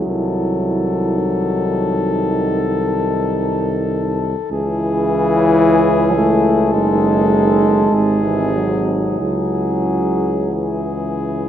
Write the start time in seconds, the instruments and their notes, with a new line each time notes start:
Already playing: euphonium F#3, french horn section E4
0.06 tuba C2, trombone D#3, flugelhorn A4
1.16 french horn section D#4
4.51 tuba C#2, trombone C#3, euphonium E3, french horn section E4, flugelhorn G#4
6.16 euphonium A3
6.72 tuba F#1, trombone D#3, euphonium G#3, french horn section D#4, flugelhorn A4
7.92 tuba G#1, trombone C3, french horn section D#4, flugelhorn G#4
8.24 euphonium E3
8.55 euphonium F#3
9.19 tuba C#2, trombone C#3, euphonium F#3, french horn section E4
9.23 flugelhorn G#4
10.50 trombone C#3, euphonium E3, french horn section E4
10.55 flugelhorn G#4